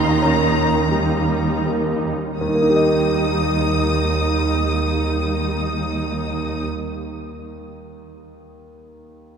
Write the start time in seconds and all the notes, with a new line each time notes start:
Already playing: D#2 A#2 D#3 A#3 D#4 G4 A#5
0.22 C#4
0.89 G3 D#4 G4
1.66 A#3
2.38 D#2 G3 D#4 D#6
2.48 D#3
2.55 A#3
2.62 D#4
2.70 G4
2.76 D#5